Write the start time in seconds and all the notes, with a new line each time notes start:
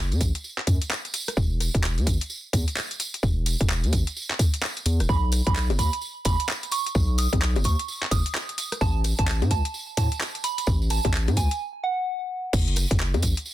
Already playing: F#1
0.12 F#2, closed hi-hat, tambourine
0.21 A1, kick, open hi-hat, tambourine
0.35 closed hi-hat, tambourine
0.44 tambourine
0.58 clap
0.67 F#2, kick, open hi-hat, tambourine
0.82 closed hi-hat, tambourine
0.91 clap, tambourine
1.05 closed hi-hat, tambourine
1.14 open hi-hat, tambourine
1.28 cross-stick, closed hi-hat, tambourine
1.37 E1, kick, tambourine
1.60 cross-stick, open hi-hat, tambourine
1.75 E1, kick, closed hi-hat, tambourine
1.84 clap, tambourine
1.98 E2, closed hi-hat, tambourine
2.07 G#1, kick, open hi-hat, tambourine
2.21 closed hi-hat, tambourine
2.30 tambourine
2.53 E2, kick, open hi-hat, tambourine
2.68 closed hi-hat, tambourine
2.76 clap, tambourine
2.91 closed hi-hat, tambourine
3.00 open hi-hat, tambourine
3.14 closed hi-hat, tambourine
3.23 E1, kick, tambourine
3.46 open hi-hat, tambourine
3.61 E1, kick, closed hi-hat, tambourine
3.69 clap, tambourine
3.83 E2, closed hi-hat, tambourine
3.92 G#1, kick, open hi-hat, tambourine
4.07 closed hi-hat, tambourine
4.17 tambourine
4.30 clap
4.39 kick, open hi-hat, tambourine
4.54 closed hi-hat, tambourine
4.62 clap, tambourine
4.77 closed hi-hat, tambourine
4.86 E2, open hi-hat, tambourine
5.00 D1, cross-stick, closed hi-hat, tambourine
5.09 B1 B5, kick, tambourine
5.32 cross-stick, open hi-hat, tambourine
5.46 B1 B5, kick, closed hi-hat, tambourine
5.56 clap, tambourine
5.70 F#1, closed hi-hat, tambourine, high bongo
5.79 D#2 B5, kick, open hi-hat, tambourine
5.93 closed hi-hat, tambourine
6.01 tambourine
6.25 F#1 B5, kick, open hi-hat, tambourine
6.39 closed hi-hat, tambourine
6.48 clap, tambourine
6.63 closed hi-hat, tambourine
6.71 C#6, open hi-hat, tambourine
6.86 closed hi-hat, tambourine
6.95 B1, kick, tambourine
7.18 D#6, open hi-hat, tambourine
7.33 B1, kick, closed hi-hat, tambourine, high bongo
7.41 clap, tambourine
7.56 F#1, closed hi-hat, tambourine, high bongo
7.64 D#2 C#6, kick, open hi-hat, tambourine
7.79 closed hi-hat, tambourine
7.88 tambourine
8.03 clap
8.11 F#1 D#6, kick, open hi-hat, tambourine
8.26 closed hi-hat, tambourine
8.34 clap, tambourine
8.49 closed hi-hat, tambourine
8.58 open hi-hat, tambourine
8.72 cross-stick, closed hi-hat, tambourine
8.81 A1 A5, kick, tambourine
9.04 cross-stick, open hi-hat, tambourine
9.18 A1 A5, kick, closed hi-hat, tambourine
9.27 clap, tambourine
9.42 A2, closed hi-hat, tambourine, high bongo
9.51 C#2 A5, kick, open hi-hat, tambourine
9.65 closed hi-hat, tambourine
9.74 tambourine
9.97 A2 A5, kick, open hi-hat, tambourine
10.12 closed hi-hat, tambourine
10.20 clap, tambourine
10.35 closed hi-hat, tambourine
10.44 B5, open hi-hat, tambourine
10.58 closed hi-hat, tambourine
10.67 A1, kick, tambourine
10.82 tambourine
10.90 A5, cross-stick, open hi-hat, tambourine
11.04 A1, kick, closed hi-hat, tambourine, high bongo
11.14 clap, tambourine
11.28 A2, closed hi-hat, tambourine, high bongo
11.37 C#2 G#5, kick, open hi-hat, tambourine
11.51 closed hi-hat, tambourine
11.84 F#5
12.53 F#1, kick, crash, tambourine
12.68 closed hi-hat
12.76 cross-stick, open hi-hat, tambourine
12.90 F#1, kick, closed hi-hat, tambourine
13.00 clap, tambourine
13.14 F#2, closed hi-hat, tambourine, high bongo
13.22 A1, kick, open hi-hat, tambourine
13.37 closed hi-hat, tambourine
13.46 tambourine